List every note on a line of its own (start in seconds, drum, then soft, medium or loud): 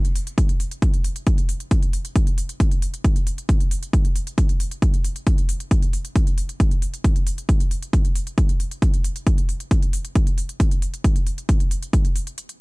0.05 closed hi-hat medium
0.16 open hi-hat loud
0.27 closed hi-hat medium
0.38 kick loud
0.38 closed hi-hat medium
0.49 closed hi-hat medium
0.60 open hi-hat medium
0.71 closed hi-hat medium
0.82 kick loud
0.82 closed hi-hat loud
0.94 closed hi-hat soft
1.04 open hi-hat loud
1.16 closed hi-hat medium
1.27 kick loud
1.27 closed hi-hat loud
1.38 closed hi-hat soft
1.49 open hi-hat medium
1.60 closed hi-hat medium
1.71 kick loud
1.71 closed hi-hat medium
1.83 closed hi-hat soft
1.93 open hi-hat loud
2.05 closed hi-hat medium
2.16 kick loud
2.16 closed hi-hat loud
2.27 closed hi-hat medium
2.38 open hi-hat medium
2.49 closed hi-hat medium
2.60 kick loud
2.60 closed hi-hat medium
2.71 closed hi-hat medium
2.82 open hi-hat loud
2.94 closed hi-hat medium
3.04 kick loud
3.04 closed hi-hat medium
3.16 closed hi-hat soft
3.27 open hi-hat medium
3.38 closed hi-hat medium
3.49 kick loud
3.49 closed hi-hat medium
3.60 closed hi-hat medium
3.71 open hi-hat loud
3.83 closed hi-hat medium
3.93 kick loud
3.93 closed hi-hat medium
4.05 closed hi-hat medium
4.16 open hi-hat loud
4.27 closed hi-hat medium
4.38 kick loud
4.38 closed hi-hat medium
4.49 closed hi-hat soft
4.60 open hi-hat loud
4.71 closed hi-hat medium
4.82 kick loud
4.82 closed hi-hat medium
4.94 closed hi-hat soft
5.04 open hi-hat medium
5.16 closed hi-hat medium
5.27 kick loud
5.27 closed hi-hat medium
5.38 closed hi-hat soft
5.49 open hi-hat loud
5.60 closed hi-hat medium
5.71 kick loud
5.71 closed hi-hat medium
5.82 closed hi-hat soft
5.93 open hi-hat medium
6.05 closed hi-hat medium
6.16 kick loud
6.16 closed hi-hat medium
6.27 closed hi-hat soft
6.38 open hi-hat loud
6.49 closed hi-hat medium
6.60 kick loud
6.60 closed hi-hat medium
6.71 closed hi-hat soft
6.82 open hi-hat medium
6.94 closed hi-hat soft
7.04 kick loud
7.04 closed hi-hat medium
7.16 closed hi-hat soft
7.27 open hi-hat loud
7.38 closed hi-hat medium
7.49 kick loud
7.49 closed hi-hat medium
7.60 closed hi-hat medium
7.71 open hi-hat medium
7.83 closed hi-hat soft
7.93 kick loud
7.93 closed hi-hat medium
8.05 closed hi-hat soft
8.15 open hi-hat loud
8.27 closed hi-hat soft
8.38 kick loud
8.38 closed hi-hat medium
8.49 closed hi-hat soft
8.60 open hi-hat medium
8.71 closed hi-hat soft
8.82 kick loud
8.82 closed hi-hat medium
8.94 closed hi-hat soft
9.04 open hi-hat loud
9.16 closed hi-hat medium
9.27 kick loud
9.27 closed hi-hat medium
9.38 closed hi-hat medium
9.49 open hi-hat medium
9.60 closed hi-hat soft
9.71 kick loud
9.71 closed hi-hat medium
9.82 closed hi-hat soft
9.93 open hi-hat loud
10.05 closed hi-hat medium
10.15 kick loud
10.15 closed hi-hat medium
10.27 closed hi-hat soft
10.38 open hi-hat medium
10.49 closed hi-hat medium
10.60 kick loud
10.60 closed hi-hat medium
10.71 closed hi-hat medium
10.82 open hi-hat loud
10.94 closed hi-hat medium
11.04 kick loud
11.04 closed hi-hat medium
11.16 closed hi-hat soft
11.27 open hi-hat medium
11.38 closed hi-hat soft
11.49 kick loud
11.49 closed hi-hat medium
11.60 closed hi-hat medium
11.71 open hi-hat loud
11.83 closed hi-hat medium
11.93 kick loud
11.93 closed hi-hat loud
12.05 closed hi-hat medium
12.16 open hi-hat medium
12.27 closed hi-hat medium
12.38 closed hi-hat medium
12.49 closed hi-hat medium